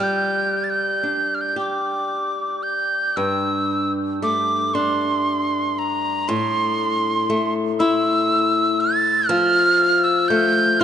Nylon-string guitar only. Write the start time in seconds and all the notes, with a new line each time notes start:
Already playing: A3
0.00 G3
1.03 D4
1.56 G4
3.17 G2
4.22 A3
4.75 D4
6.29 A2
7.30 A3
7.80 E4
9.29 F3
10.30 A3
10.81 F4